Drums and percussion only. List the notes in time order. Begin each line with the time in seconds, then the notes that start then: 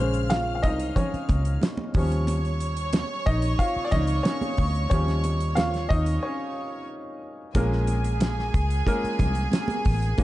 0.14 closed hi-hat
0.30 snare, closed hi-hat, high conga
0.63 kick, closed hi-hat
0.79 closed hi-hat
0.96 kick, closed hi-hat, low conga
1.14 closed hi-hat
1.29 kick, closed hi-hat, muted conga
1.45 closed hi-hat
1.61 snare, closed hi-hat, high conga
1.77 high conga
1.94 kick, open hi-hat
2.12 closed hi-hat
2.27 closed hi-hat, muted conga
2.45 closed hi-hat
2.60 closed hi-hat
2.77 closed hi-hat
2.93 snare, closed hi-hat, high conga
3.27 kick, closed hi-hat
3.42 closed hi-hat
3.59 kick, closed hi-hat
3.92 kick, closed hi-hat, muted conga, low conga
4.07 closed hi-hat
4.25 snare, closed hi-hat, high conga
4.41 closed hi-hat, high conga
4.57 kick, open hi-hat
4.75 closed hi-hat
4.91 kick, closed hi-hat, muted conga
5.08 snare, closed hi-hat
5.24 closed hi-hat, muted conga
5.40 closed hi-hat
5.57 snare, closed hi-hat, high conga
5.74 snare, closed hi-hat
5.91 kick, closed hi-hat
6.06 closed hi-hat
7.55 kick, closed hi-hat, muted conga
7.72 snare
7.87 closed hi-hat, muted conga
8.04 closed hi-hat
8.20 snare, closed hi-hat, high conga
8.39 snare
8.54 kick, closed hi-hat
8.70 closed hi-hat
8.87 kick, closed hi-hat
9.05 closed hi-hat
9.19 kick, closed hi-hat, muted conga, low conga
9.35 closed hi-hat
9.52 snare, closed hi-hat, high conga
9.68 closed hi-hat, high conga
9.85 kick, open hi-hat
10.02 closed hi-hat
10.18 kick, closed hi-hat, muted conga